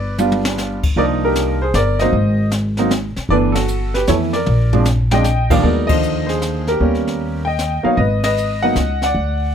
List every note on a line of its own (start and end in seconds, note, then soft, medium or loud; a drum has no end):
0.00 0.93 G1 medium
0.00 0.17 B4 medium
0.00 0.14 D5 loud
0.18 0.78 G3 medium
0.18 0.78 B3 medium
0.18 0.78 D4 medium
0.18 0.79 F4 medium
0.18 hi-hat pedal medium
0.18 high tom soft
0.32 high tom medium
0.45 snare medium
0.58 snare medium
0.58 hi-hat pedal soft
0.83 kick medium
0.83 crash medium
0.96 1.70 C2 medium
0.96 1.56 F3 medium
0.96 1.56 A#3 medium
0.96 1.56 D4 medium
0.96 1.56 D#4 medium
0.96 1.04 A#4 medium
0.96 1.04 D5 medium
0.96 brush sweep soft
0.96 kick soft
1.25 1.61 G4 medium
1.25 1.64 A#4 medium
1.35 snare medium
1.35 hi-hat pedal medium
1.62 1.75 G#4 medium
1.62 1.74 C5 medium
1.74 2.10 G1 medium
1.74 2.00 A#4 medium
1.74 1.99 D5 loud
1.74 snare medium
1.74 hi-hat pedal soft
1.99 2.13 F#3 medium
1.99 2.13 A#3 medium
1.99 2.13 C4 medium
1.99 2.13 D#4 medium
1.99 2.49 C5 medium
1.99 2.48 D#5 loud
1.99 snare soft
2.13 3.12 G#1 medium
2.13 brush sweep soft
2.13 kick soft
2.51 snare medium
2.51 hi-hat pedal medium
2.77 2.90 F#3 medium
2.77 2.90 A#3 medium
2.77 2.90 C4 medium
2.77 2.90 D#4 medium
2.77 snare soft
2.91 snare medium
2.91 hi-hat pedal medium
3.16 muted upright bass stroke soft
3.16 snare soft
3.29 4.03 G1 medium
3.29 3.54 E3 medium
3.29 3.54 A3 medium
3.29 3.54 B3 medium
3.29 3.54 D4 medium
3.29 3.38 B4 medium
3.29 3.36 D5 loud
3.29 brush sweep soft
3.29 kick soft
3.52 3.92 F#4 medium
3.52 3.94 A4 medium
3.52 snare medium
3.52 ride medium
3.68 hi-hat pedal medium
3.94 4.08 G4 medium
3.94 4.08 B4 medium
3.94 snare soft
4.07 4.44 F2 medium
4.07 4.31 E3 medium
4.07 4.32 A3 medium
4.07 4.32 B3 soft
4.07 4.32 E4 medium
4.07 4.15 A4 medium
4.07 4.14 C#5 loud
4.07 snare medium
4.07 hi-hat pedal medium
4.33 4.83 A#4 medium
4.33 4.82 D5 medium
4.33 snare soft
4.46 5.60 A#1 medium
4.46 mid tom soft
4.73 4.85 F3 medium
4.73 4.85 G#3 medium
4.73 4.85 C4 medium
4.73 4.85 D4 medium
4.73 floor tom medium
4.85 snare medium
4.85 hi-hat pedal medium
5.11 5.24 F3 medium
5.11 5.24 G#3 medium
5.11 5.24 C4 medium
5.11 5.24 D4 medium
5.11 5.49 D#5 medium
5.11 5.52 G5 medium
5.11 snare medium
5.24 snare medium
5.24 hi-hat pedal medium
5.50 5.63 D#2 medium
5.50 5.63 F3 medium
5.50 5.63 G3 medium
5.50 5.63 A#3 medium
5.50 5.63 D4 medium
5.50 5.61 D5 medium
5.50 5.63 F5 medium
5.50 kick medium
5.50 crash medium
5.62 6.77 D#2 medium
5.62 5.86 F#3 medium
5.62 5.87 G#3 medium
5.62 5.87 B3 medium
5.62 5.87 D#4 medium
5.62 5.88 A#4 medium
5.62 5.90 D5 medium
5.62 brush sweep soft
5.62 kick soft
5.87 6.73 D3 medium
5.87 6.73 D#3 soft
5.87 6.73 F3 medium
5.87 6.73 A#3 soft
5.87 6.25 C5 medium
5.87 6.29 D#5 loud
5.87 kick medium
5.87 ride medium
6.03 hi-hat pedal soft
6.27 6.65 G#4 medium
6.27 6.68 C5 medium
6.27 snare soft
6.42 snare medium
6.42 hi-hat pedal medium
6.67 7.43 G4 medium
6.67 7.42 A#4 medium
6.67 snare soft
6.80 7.81 D#2 medium
6.80 7.40 G3 medium
6.80 7.41 A#3 soft
6.80 7.41 B3 soft
6.80 7.40 C#4 medium
6.80 brush sweep soft
6.80 kick soft
6.95 snare soft
7.07 snare soft
7.45 7.83 D#5 medium
7.45 7.82 G5 medium
7.59 snare medium
7.59 hi-hat pedal medium
7.83 7.96 F#3 medium
7.83 7.96 A#3 medium
7.83 7.96 B3 medium
7.83 7.97 D#4 medium
7.83 7.98 C#5 medium
7.83 7.99 F5 medium
7.83 muted upright bass stroke soft
7.97 8.72 G#1 medium
7.97 8.23 B4 medium
7.97 8.22 D#5 medium
7.97 brush sweep soft
7.97 kick soft
8.23 8.61 B4 medium
8.23 8.60 D#5 loud
8.23 snare medium
8.23 ride medium
8.37 hi-hat pedal medium
8.63 8.75 F#3 medium
8.63 8.76 A#3 medium
8.63 8.76 B3 medium
8.63 8.75 D#4 medium
8.63 9.00 D#5 medium
8.63 9.02 F#5 loud
8.75 9.12 C#2 medium
8.75 snare medium
8.75 hi-hat pedal medium
9.02 9.55 D5 medium
9.02 9.55 F#5 loud
9.02 snare soft
9.15 9.55 D2 medium
9.15 brush sweep soft
9.15 kick soft